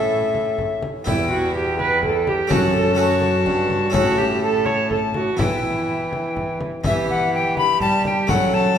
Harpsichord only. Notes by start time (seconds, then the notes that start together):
Already playing: A2 C#4 E4 A4
1.04 E2 B3 E4 G4
2.47 F#2 A3 C#4 F#4
2.95 A3 C#4 F#4
3.46 G2
3.90 A2 A3 C#4 E4
5.37 E3 B3 E4
6.84 E3 B3 E4
7.82 G3
8.27 F#3 A3 C#4